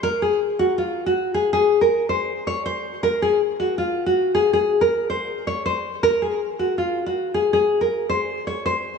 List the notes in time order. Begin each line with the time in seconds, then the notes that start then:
0.03 A#4
0.22 G#4
0.59 F#4
0.78 F4
1.06 F#4
1.34 G#4
1.53 G#4
1.81 A#4
2.09 C5
2.47 C#5
2.66 C5
3.03 A#4
3.22 G#4
3.60 F#4
3.78 F4
4.06 F#4
4.35 G#4
4.53 G#4
4.81 A#4
5.10 C5
5.47 C#5
5.66 C5
6.03 A#4
6.22 G#4
6.59 F#4
6.78 F4
7.06 F#4
7.34 G#4
7.53 G#4
7.81 A#4
8.09 C5
8.47 C#5
8.66 C5